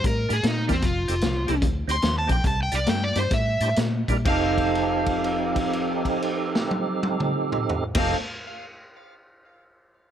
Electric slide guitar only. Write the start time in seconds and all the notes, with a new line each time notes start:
0.07 A#4
0.33 G#4
0.47 D#4
0.73 C4
0.85 F4
1.91 C6
2.18 A5
2.32 G5
2.47 A5
2.63 G5
2.75 D5
2.89 G5
3.04 D5
3.19 C5
3.34 E5
4.28 F5
7.98 F5